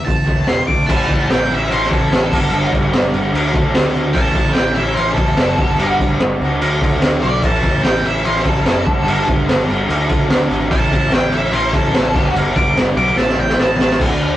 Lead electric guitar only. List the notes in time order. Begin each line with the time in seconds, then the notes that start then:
0.05 A5
0.49 C6
0.67 D6
0.86 A5
1.32 G5
1.54 E5
1.71 C5
1.93 A4
4.14 A5
4.53 G5
4.75 E5
4.94 C5
5.14 A4
7.22 D5
7.45 A5
7.83 G5
8.06 E5
8.25 C5
8.47 A4
10.72 A5
11.14 G5
11.34 E5
11.52 C5
11.75 A4
12.57 D6
12.97 D6
13.17 A5
13.40 G5
13.59 A5
13.77 A5